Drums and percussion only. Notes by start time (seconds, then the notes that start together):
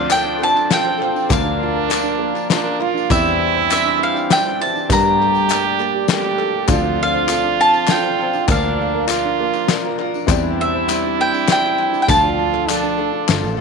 0.10 clap, closed hi-hat, tambourine
0.57 clap, tambourine
0.71 snare, clap, closed hi-hat, tambourine
1.02 clap
1.16 tambourine
1.30 kick, clap, closed hi-hat, tambourine
1.90 clap, closed hi-hat, tambourine
2.36 clap, tambourine
2.50 snare, clap, closed hi-hat, tambourine
2.81 clap
2.97 tambourine
3.10 kick, clap, closed hi-hat, tambourine
3.70 clap, closed hi-hat, tambourine
4.17 clap, tambourine
4.30 snare, clap, closed hi-hat, tambourine
4.63 clap
4.76 tambourine
4.90 kick, clap, closed hi-hat, tambourine
5.22 clap
5.35 tambourine
5.49 clap, closed hi-hat, tambourine
5.79 clap, tambourine
6.08 snare, clap, closed hi-hat, tambourine
6.24 clap
6.39 clap
6.68 kick, clap, closed hi-hat, tambourine
7.28 clap, closed hi-hat, tambourine
7.74 clap, tambourine
7.87 snare, clap, closed hi-hat, tambourine
8.33 tambourine
8.48 kick, clap, closed hi-hat, tambourine
9.08 clap, closed hi-hat, tambourine
9.54 clap, tambourine
9.68 snare, clap, closed hi-hat, tambourine
9.99 clap
10.14 tambourine
10.28 kick, clap, closed hi-hat, tambourine
10.88 clap, closed hi-hat, tambourine
11.34 clap, tambourine
11.48 snare, clap, closed hi-hat, tambourine
11.79 clap
11.94 tambourine
12.09 kick, clap, closed hi-hat, tambourine
12.54 clap
12.69 clap, closed hi-hat, tambourine
12.84 tambourine
13.28 snare, clap, closed hi-hat, tambourine
13.44 tambourine